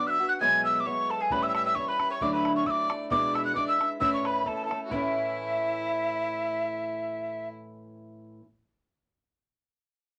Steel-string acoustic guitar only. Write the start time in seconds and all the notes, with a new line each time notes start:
Already playing: F#3 B3 D4 F#4
0.19 B3 D4 F#4
0.40 E2 B2 F#3 G#3 B3 E4
0.85 F#3 G#3 B3 E4
1.31 A2 E3 G3 C#4 E4
1.76 E3 G3 C#4 E4
1.99 G3 C#4 E4
2.21 D3 F#3 A3 D4 E4
2.65 F#3 A3 D4 E4
2.90 A3 D4 E4
3.10 E2 B2 E3 G#3 D4 E4
3.55 E3 G#3 D4 E4
3.79 E3 G#3 D4 E4
4.00 A2 E3 A3 C#4 E4
4.45 E3 A3 C#4 E4
4.68 A3 C#4 E4
4.89 A2 E3 A3 C#4
4.94 E4